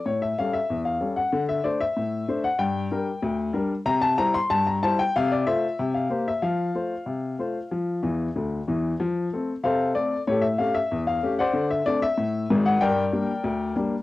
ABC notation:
X:1
M:2/4
L:1/16
Q:1/4=94
K:F
V:1 name="Upright piano"
^c e f e2 f2 _g- | _g e d e4 g | g6 z2 | b a b c' a b a g |
f d e3 f2 e | f8- | f6 z2 | z4 [Acf]2 d2 |
[GA^c] e f e2 f2 [=cd_g]- | [cd_g] e d e4 g | [Bdg]6 z2 |]
V:2 name="Upright piano"
A,,2 [G,^CA]2 E,,2 [G,CA]2 | D,2 [A,Dc]2 A,,2 [A,Dc]2 | G,,2 [G,DB]2 D,,2 [G,DB]2 | C,2 [G,Ec]2 G,,2 [G,Ec]2 |
C,2 [A,Fc]2 C,2 [B,Gc]2 | F,2 [A,Fc]2 C,2 [A,Fc]2 | F,2 [E,,E,]2 [D,,D,]2 [E,,E,]2 | F,2 [A,CA]2 C,2 [A,CA]2 |
A,,2 [A,^CG]2 E,,2 [A,CG]2 | D,2 [A,CD]2 A,,2 [_A,,,_A,,]2 | G,,2 [G,B,D]2 D,,2 [G,B,D]2 |]